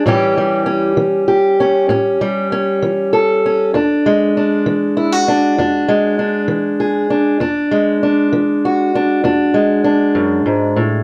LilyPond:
\new Staff \with { instrumentName = "Steel-string acoustic guitar" } { \time 12/8 \key e \mixolydian \tempo 4. = 65 << { <e g cis' g'>8 g8 cis'4 g'8 cis'8 cis'8 g8 cis'4 a'8 cis'8 | d'8 gis8 d'4 e'16 fis'16 d'8 d'8 gis8 d'4 gis'8 d'8 | d'8 gis8 d'4 fis'8 d'8 d'8 gis8 d'2 | } \\ { a,4 r8 e4 r8 a,4 r8 e4 r8 | e,4 r8 e4 r8 e,4 r8 e4 r8 | e,4 r8 e4 r8 e,4 r8 fis,8 gis,8 a,8 | } >> }